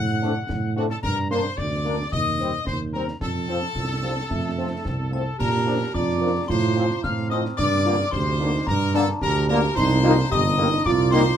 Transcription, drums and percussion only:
0.22 snare medium
0.49 concert bass drum medium
0.49 snare medium
0.90 snare medium
1.03 concert bass drum loud
1.03 snare medium
1.03 crash soft
1.31 snare medium
1.45 snare medium
1.58 concert bass drum medium
1.58 snare medium
2.12 concert bass drum loud
2.39 snare soft
2.67 concert bass drum medium
2.67 snare medium
3.08 snare medium
3.21 concert bass drum medium
3.21 snare medium
3.49 snare soft
3.62 snare medium
3.75 concert bass drum medium
3.75 snare medium
4.31 concert bass drum medium
4.31 snare medium
4.85 concert bass drum medium
4.85 snare medium
5.40 concert bass drum medium
5.40 snare medium
5.40 crash medium
5.95 concert bass drum medium
5.95 snare medium
6.49 concert bass drum medium
6.49 snare medium
6.77 snare medium
6.90 snare medium
7.04 concert bass drum medium
7.04 snare medium
7.31 snare medium
7.45 snare medium
7.59 concert bass drum medium
7.59 snare medium
7.59 crash soft
8.12 concert bass drum medium
8.12 snare medium
8.67 concert bass drum loud
8.67 snare medium
8.94 snare medium
9.08 snare medium
9.21 concert bass drum medium
9.21 snare medium
9.49 snare medium
9.63 snare medium
9.77 concert bass drum medium
9.77 snare medium
9.77 crash soft
10.32 concert bass drum loud
10.32 snare medium
10.85 concert bass drum loud
10.85 snare medium
11.12 snare medium
11.26 snare medium

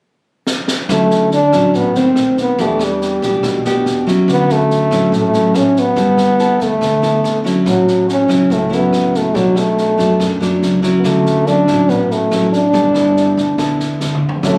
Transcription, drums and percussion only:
0.47 snare soft
0.68 snare medium
0.89 kick medium
0.89 cross-stick medium
0.89 snare soft
1.10 snare soft
1.31 snare soft
1.53 kick soft
1.53 cross-stick medium
1.53 snare soft
1.74 kick medium
1.74 snare soft
1.95 snare soft
2.16 cross-stick medium
2.16 snare soft
2.37 kick soft
2.37 snare soft
2.58 kick medium
2.58 snare soft
2.79 cross-stick medium
2.79 snare soft
3.01 snare soft
3.22 kick soft
3.22 snare soft
3.43 kick medium
3.43 cross-stick medium
3.43 snare soft
3.65 snare soft
3.86 snare soft
4.07 kick soft
4.07 snare soft
4.28 kick medium
4.28 cross-stick medium
4.28 snare soft
4.49 snare soft
4.70 snare soft
4.91 kick soft
4.91 cross-stick medium
4.91 snare soft
5.12 kick medium
5.12 snare soft
5.34 snare soft
5.54 cross-stick medium
5.54 snare soft
5.75 kick soft
5.75 snare soft
5.96 kick medium
5.96 snare soft
6.17 cross-stick medium
6.17 snare soft
6.39 snare soft
6.60 kick soft
6.60 snare soft
6.81 kick medium
6.81 cross-stick medium
6.81 snare soft
7.03 snare soft
7.24 snare soft
7.45 kick soft
7.45 snare soft
7.66 kick medium
7.66 cross-stick medium
7.66 snare soft
7.87 snare soft
8.08 snare soft
8.29 kick soft
8.29 cross-stick medium
8.29 snare soft
8.50 kick medium
8.50 snare soft
8.72 snare soft
8.93 cross-stick medium
8.93 snare soft
9.14 kick soft
9.14 snare soft
9.35 kick medium
9.35 snare soft
9.56 cross-stick medium
9.56 snare soft
9.78 snare soft
9.99 kick soft
9.99 snare soft
10.20 kick medium
10.20 cross-stick medium
10.20 snare soft
10.42 snare soft
10.62 snare soft
10.83 kick soft
10.83 snare soft
11.04 kick medium
11.04 cross-stick medium
11.04 snare soft
11.26 snare soft
11.46 snare soft
11.68 kick soft
11.68 cross-stick medium
11.68 snare soft
11.89 kick medium
11.89 snare soft
12.11 snare soft
12.31 cross-stick medium
12.31 snare soft
12.53 kick soft
12.53 snare soft
12.74 kick medium
12.74 snare soft
12.94 cross-stick medium
12.94 snare soft
13.16 snare soft
13.37 kick soft
13.37 snare soft
13.58 kick medium
13.58 cross-stick medium
13.58 snare soft
13.80 snare soft
14.00 snare soft
14.14 mid tom soft
14.29 floor tom medium
14.43 kick medium
14.43 cross-stick medium
14.43 snare soft

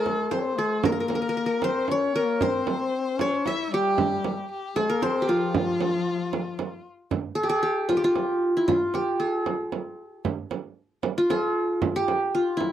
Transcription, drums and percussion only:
0.06 frame drum medium
0.31 frame drum medium
0.84 frame drum loud
1.10 frame drum medium
1.62 frame drum medium
1.88 frame drum medium
2.41 frame drum medium
2.67 frame drum medium
3.19 frame drum medium
3.46 frame drum medium
3.98 frame drum medium
4.24 frame drum medium
4.76 frame drum medium
5.02 frame drum medium
5.54 frame drum medium
5.81 frame drum medium
6.33 frame drum medium
6.59 frame drum medium
7.11 frame drum medium
7.89 frame drum medium
8.16 frame drum medium
8.68 frame drum medium
8.94 frame drum medium
9.46 frame drum medium
9.72 frame drum medium
10.25 frame drum medium
10.51 frame drum medium
11.03 frame drum medium
11.30 frame drum medium
11.82 frame drum medium
12.08 frame drum medium
12.60 frame drum medium

